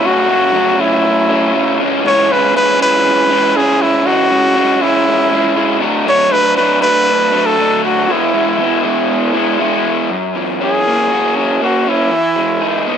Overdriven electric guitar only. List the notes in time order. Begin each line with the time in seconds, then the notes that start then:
0.03 F#2 C#3 F#3 A3 C#4
0.28 F#3 A3 C#4
0.53 F#2 C#3 F#3 A3 C#4
0.78 F#3 A3 C#4
1.29 F#3 A3 C#4
1.54 C#3 F#3 A3 C#4
1.80 C#3 E3 G#3 C#4
2.04 C#3 E3 G#3 C#4
2.29 E3 G#3 C#4
2.54 C#3 E3 G#3 C#4
2.79 E3 G#3 C#4
3.30 E3 G#3 C#4
3.56 C#3 E3 G#3 C#4
4.06 C#3 E3 G#3 C#4
4.31 E3 G#3 C#4
4.55 C#3 E3 G#3 C#4
4.81 E3 G#3 C#4
5.31 E3 G#3 C#4
5.55 C#3 E3 G#3 C#4
5.80 D3 F#3 A3 D4
6.05 D3 F#3 A3 D4
6.31 F#3 A3 D4
6.57 D3 F#3 A3 D4
6.82 F#3 A3 D4
7.32 F#3 A3 D4
7.56 D3 F#3 A3 D4
8.08 E3 G#3 B3 E4
8.33 G#3 B3 E4
8.58 E3 G#3 B3 E4
8.83 G#3 B3 E4
9.33 G#3 B3 E4
9.59 E3 G#3 B3 E4
10.10 F#2
10.35 E3
10.60 C#4
10.87 A#3
11.11 F#4
11.36 C#4
11.62 A#3
11.86 C#4
12.11 E3
12.36 G#3
12.62 D#4
12.87 B3